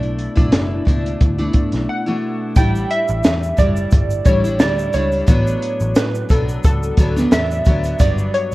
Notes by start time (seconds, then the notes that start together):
Already playing: B1 B2 A3 D4 E4 D5
0.03 closed hi-hat
0.18 closed hi-hat
0.35 B1 B2 A3 D4 E4, kick, closed hi-hat
0.52 F#1, snare, closed hi-hat
0.85 C#2 B2 A3 D4 E4, kick, closed hi-hat
1.06 closed hi-hat
1.21 D2, kick, closed hi-hat
1.38 B2 A3 D4 E4, closed hi-hat
1.53 muted picked electric bass stroke, kick, closed hi-hat
1.72 B1, snare, closed hi-hat
1.89 F#5
2.06 B2 A3 D4 E4
2.56 A1 A2 G3 D4 E4 G5, kick, closed hi-hat, shaker
2.75 shaker
2.90 E5, closed hi-hat
3.08 A1, shaker
3.23 E2, snare, closed hi-hat, shaker
3.43 shaker
3.57 F#1 A2 G3 D4 E4 D5, kick, closed hi-hat, shaker
3.77 shaker
3.91 G1, kick, closed hi-hat, shaker
4.11 shaker
4.25 A1 A2 G3 D4 E4 C#5, kick, closed hi-hat, shaker
4.44 G3 D4 E4, shaker
4.59 D2 A2 G3 D4 E4 D5, snare, closed hi-hat, shaker
4.79 shaker
4.93 C#2 A2 G3 D4 E4 C#5, closed hi-hat, shaker
5.12 closed hi-hat, shaker
5.26 A1 A2 F#3 B3 D4, kick, closed hi-hat, shaker
5.47 shaker
5.62 closed hi-hat
5.80 A1, shaker
5.95 A2 B4, snare, closed hi-hat, shaker
6.15 shaker
6.29 B1 A2 F#3 B3 A4, kick, closed hi-hat, shaker
6.33 D4
6.49 shaker
6.63 C#2 A4, kick, closed hi-hat, shaker
6.83 shaker
6.97 D2 A2 F#3 B3 D4, kick, closed hi-hat, shaker
7.16 F#3 B3 D4, snare, shaker
7.31 E2 A2 F#3 B3 D4 E5, snare, closed hi-hat, shaker
7.51 shaker
7.65 D2 A2 F#3 B3 D4, kick, closed hi-hat, shaker
7.83 closed hi-hat, shaker
7.99 G1 G2 F#3 B3 D4 D5, kick, closed hi-hat, shaker
8.18 shaker
8.34 C#5, closed hi-hat
8.52 shaker